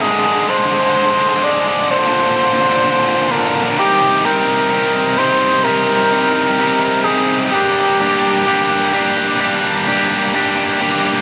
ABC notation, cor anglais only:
X:1
M:4/4
L:1/8
Q:1/4=64
K:Cm
V:1 name="Cor anglais"
A c2 d c3 B | G B2 c B3 A | G4 z4 |]